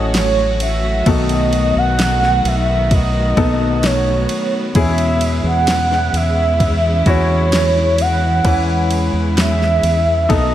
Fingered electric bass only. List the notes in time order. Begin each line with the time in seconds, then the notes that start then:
Already playing: A1
1.06 B1
1.76 B1
2.45 B1
3.37 B1
4.75 E2
5.44 E2
6.13 E2
7.06 E2
8.45 E2
9.13 E2
9.83 E2
10.30 B1